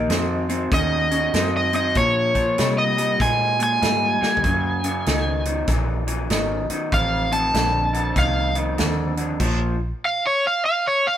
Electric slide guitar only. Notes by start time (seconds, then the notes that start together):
0.74 D#5
1.57 D#5
1.76 D#5
1.97 C#5
2.78 D#5
3.22 G#5
3.63 G#5
6.94 F5
7.33 A5
8.19 F5
10.05 F5
10.27 C#5
10.47 F5
10.66 F5
10.87 C#5
11.07 F5